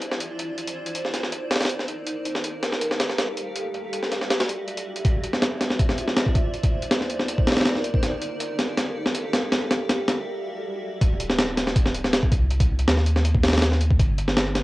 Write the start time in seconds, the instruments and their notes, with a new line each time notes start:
Already playing: ambient pad E4 F4 C5 D5
0.02 closed hi-hat
0.11 snare
0.20 closed hi-hat
0.39 closed hi-hat
0.57 ambient pad D#4 A#4, closed hi-hat
0.67 closed hi-hat
0.86 closed hi-hat
0.95 closed hi-hat
1.05 snare
1.14 snare, closed hi-hat
1.23 snare
1.32 closed hi-hat
1.51 snare, closed hi-hat
1.55 snare, closed hi-hat
1.60 snare, closed hi-hat
1.65 snare, closed hi-hat
1.69 closed hi-hat
1.79 snare
1.88 closed hi-hat
2.06 ambient pad G4 A4 F5, closed hi-hat
2.25 closed hi-hat
2.35 snare
2.44 closed hi-hat
2.63 snare, closed hi-hat
2.72 snare
2.81 closed hi-hat
2.91 snare
3.00 snare, closed hi-hat
3.10 snare
3.18 snare, closed hi-hat
3.37 closed hi-hat
3.56 ambient pad F#4 D5 E5, closed hi-hat
3.74 closed hi-hat
3.93 closed hi-hat
4.03 snare
4.12 snare, closed hi-hat
4.22 snare
4.31 snare, closed hi-hat
4.40 snare, closed hi-hat
4.49 closed hi-hat
4.68 closed hi-hat
4.77 closed hi-hat
4.96 closed hi-hat
5.05 sub bass D1, ambient pad F4 C5 D5 E5, kick, closed hi-hat
5.24 closed hi-hat
5.33 snare
5.42 snare, closed hi-hat
5.61 snare, closed hi-hat
5.70 snare
5.79 kick, closed hi-hat
5.89 snare
5.98 closed hi-hat
6.08 sub bass D1, snare
6.17 snare, closed hi-hat
6.26 kick
6.35 sub bass C2, kick, closed hi-hat
6.54 ambient pad D#4 A#4 D5, closed hi-hat
6.64 kick, closed hi-hat
6.82 closed hi-hat
6.91 sub bass D#2, snare, closed hi-hat
7.01 snare
7.10 closed hi-hat
7.19 snare
7.28 closed hi-hat
7.38 kick
7.47 snare, closed hi-hat
7.52 snare, closed hi-hat
7.57 snare, closed hi-hat
7.61 snare, closed hi-hat
7.66 snare, closed hi-hat
7.75 snare
7.84 closed hi-hat
7.94 kick
8.03 sub bass G1, ambient pad G4 A4 F5, snare, closed hi-hat
8.22 closed hi-hat
8.40 closed hi-hat
8.59 snare, closed hi-hat
8.77 snare, closed hi-hat
9.06 sub bass G1, snare
9.15 closed hi-hat
9.33 sub bass E1, snare, closed hi-hat
9.52 ambient pad F#4 D5 E5, snare, closed hi-hat
9.71 snare, closed hi-hat
9.89 sub bass G1, snare, closed hi-hat
10.08 snare, closed hi-hat
11.01 sub bass D1, kick, closed hi-hat
11.20 closed hi-hat
11.30 snare
11.39 snare, closed hi-hat
11.57 snare, closed hi-hat
11.67 snare
11.76 kick, closed hi-hat
11.86 snare
11.95 closed hi-hat
12.04 sub bass D1, snare
12.13 snare, closed hi-hat
12.23 kick
12.32 sub bass C2, kick, closed hi-hat
12.51 closed hi-hat
12.60 kick, closed hi-hat
12.79 closed hi-hat
12.88 sub bass D#2, snare, closed hi-hat
12.97 snare
13.06 closed hi-hat
13.16 snare
13.25 closed hi-hat
13.35 kick
13.44 snare, closed hi-hat
13.48 snare, closed hi-hat
13.53 snare, closed hi-hat
13.58 snare, closed hi-hat
13.62 snare, closed hi-hat
13.72 snare
13.81 closed hi-hat
13.91 kick
13.99 sub bass G1, kick, closed hi-hat
14.18 closed hi-hat
14.28 snare
14.37 snare, closed hi-hat
14.55 snare, closed hi-hat